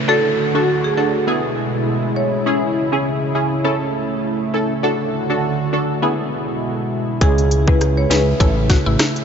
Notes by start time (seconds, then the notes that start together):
Already playing: A3, downlifter
0.08 D3 D4 F#4 A4
0.55 D4 F#4 A4
0.84 G#4
0.97 D4 F#4 A4
1.27 B2 G#3 B3 E4 G#4
2.16 C#5
2.46 C#3 C#4 E4 G#4
2.92 C#4 E4 G#4
3.35 C#4 E4 G#4
3.64 A3 C#4 E4 A4
4.54 C#4 E4 A4
4.83 D3 D4 F#4 A4
5.30 D4 F#4 A4
5.73 D4 F#4 A4
6.02 B2 G#3 B3 E4 G#4
7.21 C#2 C#3 C#4 E4 G#4, kick, closed hi-hat
7.38 closed hi-hat
7.51 closed hi-hat
7.67 C#4 E4 G#4 B4, kick
7.81 cross-stick, closed hi-hat
7.97 C#5
8.10 C#2 C#4 E4 G#4 B4, snare, closed hi-hat
8.40 A1 A3 C#4 E4 A4, kick, closed hi-hat
8.70 F#4, kick, snare, closed hi-hat
8.86 A1 E4
8.99 cross-stick, snare, closed hi-hat
9.16 closed hi-hat